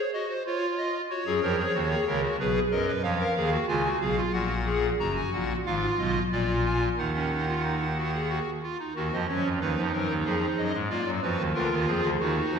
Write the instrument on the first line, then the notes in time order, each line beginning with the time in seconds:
pipe organ
Already playing: C#5
0.13 F#4 D#5
0.29 C5
0.46 F4 C#5
0.78 D#5
1.10 F#4 C#5
1.26 F#2 F#3 G#4
1.42 F2 F3 A#4
1.58 G#4
1.74 D#2 D#3 F#4
1.90 G#4
2.06 C#2 C#3 A#4
2.22 F#4
2.39 B1 B2 G#4 B4
2.71 F#2 F#3 A#4 D#5
2.87 B4
3.03 F2 F3 C#5 F5
3.20 A#4
3.36 D#2 D#3 G#4
3.52 F#4
3.68 C#2 C#3 F4 G#5
3.84 F#4
4.01 B1 B2 G#4 F5
4.17 F4
4.33 A#1 A#2 F#4 F#5
4.66 G#4
4.99 F#1 F#2 F#4 A#5
5.16 G#5
5.32 A#1 A#2 F#5
5.65 G#1 G#2 F4 F5
5.98 B1 B2 D#5
6.31 A#1 A#2 F4 D5
6.65 G#5
6.98 D#2 D#3 D#4 F#5
7.14 C#4
7.32 D#4
7.48 F4
7.64 D#4
7.97 F#4
8.13 G#4
8.30 F#4
8.63 F4
8.79 D#4
8.96 D#2 D#3 F#4
9.12 F2 F3 D#5
9.28 F#2 F#3 C#4 C#5
9.44 F2 F3
9.61 D#2 D#3 D#4 B4
9.77 F2 F3
9.93 F#2 F#3 A#4
10.10 D#2 D#3
10.25 F2 F3 G#4
10.57 F#2 F#3 D#5
10.73 G#2 G#3
10.89 A#3 F4 D5
11.06 F#2 F#3
11.22 F2 F3 F#4 B4
11.38 D#2 D#3
11.54 D2 D3 F4 A#4
11.71 D#2 D#3
11.87 F2 F3 G#4
12.03 D2 D3
12.20 D#2 D#3 D#4 F#4
12.52 F2 F3